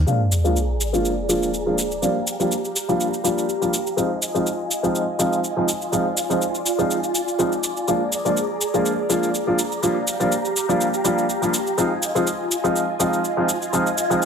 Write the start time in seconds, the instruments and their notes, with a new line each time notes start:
0.07 grand piano F3 G#3 A#3 D4 F4, string machine G#4 D5 A#5, sub drop, cabasa
0.32 cabasa
0.44 grand piano F3 G#3 A#3 D4 F4, cabasa
0.56 cabasa
0.81 cabasa
0.93 grand piano F3 G#3 A#3 D4 F4, cabasa
1.05 cabasa
1.28 grand piano F3 G#3 A#3 D4 F4, cabasa
1.43 cabasa
1.54 cabasa
1.66 grand piano F3 G#3 A#3 D4 F4
1.78 cabasa
1.91 cabasa
2.02 grand piano F3 G3 A#3 D4 F4, string machine G4 F5, cabasa
2.27 cabasa
2.39 grand piano F3 G3 A#3 D4 F4, cabasa
2.52 cabasa
2.65 cabasa
2.76 cabasa
2.88 grand piano F3 G3 A#3 D4 F4, cabasa
3.00 cabasa
3.14 cabasa
3.24 grand piano F3 G3 A#3 D4 F4, cabasa
3.38 cabasa
3.49 cabasa
3.61 grand piano F3 G3 A#3 D4 F4, cabasa
3.74 cabasa
3.87 cabasa
3.96 grand piano F3 G#3 C4 D#4 F4, string machine F4 D#5 G#5, cabasa
4.22 cabasa
4.34 grand piano F3 G#3 C4 D#4 F4, cabasa
4.47 cabasa
4.71 cabasa
4.83 grand piano F3 G#3 C4 D#4 F4, cabasa
4.95 cabasa
5.19 grand piano F3 G#3 C4 D#4 F4, cabasa
5.33 cabasa
5.44 cabasa
5.56 grand piano F3 G#3 C4 D#4 F4
5.68 cabasa
5.82 cabasa
5.92 grand piano F3 G#3 C4 D#4 F4, string machine D5, cabasa
6.17 cabasa
6.30 grand piano F3 G#3 C4 D#4 F4, cabasa
6.42 cabasa
6.55 cabasa
6.66 cabasa
6.78 grand piano F3 G#3 C4 D#4 F4, cabasa
6.91 cabasa
7.04 cabasa
7.15 cabasa
7.28 cabasa
7.39 grand piano F3 G#3 C4 D#4 F4, cabasa
7.52 cabasa
7.64 cabasa
7.77 cabasa
7.88 grand piano F3 G#3 A#3 D4 F4, string machine G#4 A#5, cabasa
8.12 cabasa
8.25 grand piano F3 G#3 A#3 D4 F4, cabasa
8.37 cabasa
8.61 cabasa
8.74 grand piano F3 G#3 A#3 D4 F4, cabasa
8.86 cabasa
9.09 grand piano F3 G#3 A#3 D4 F4, cabasa
9.23 cabasa
9.34 cabasa
9.47 grand piano F3 G#3 A#3 D4 F4
9.59 cabasa
9.72 cabasa
9.82 grand piano F3 G3 A#3 D4 F4, string machine G4 F5, cabasa
10.07 cabasa
10.20 grand piano F3 G3 A#3 D4 F4, cabasa
10.32 cabasa
10.45 cabasa
10.56 cabasa
10.68 grand piano F3 G3 A#3 D4 F4, cabasa
10.81 cabasa
10.94 cabasa
11.04 grand piano F3 G3 A#3 D4 F4, cabasa
11.18 cabasa
11.30 cabasa
11.42 grand piano F3 G3 A#3 D4 F4, cabasa
11.54 cabasa
11.67 cabasa
11.77 grand piano F3 G#3 C4 D#4 F4, string machine F4 D#5 G#5, cabasa
12.03 cabasa
12.15 grand piano F3 G#3 C4 D#4 F4, cabasa
12.27 cabasa
12.51 cabasa
12.64 grand piano F3 G#3 C4 D#4 F4, cabasa
12.76 cabasa
12.99 grand piano F3 G#3 C4 D#4 F4, cabasa
13.13 cabasa
13.25 cabasa
13.37 grand piano F3 G#3 C4 D#4 F4
13.49 cabasa
13.62 cabasa
13.73 grand piano F3 G#3 C4 D#4 F4, cabasa
13.87 cabasa
13.98 cabasa
14.10 grand piano F3 G#3 C4 D#4 F4, cabasa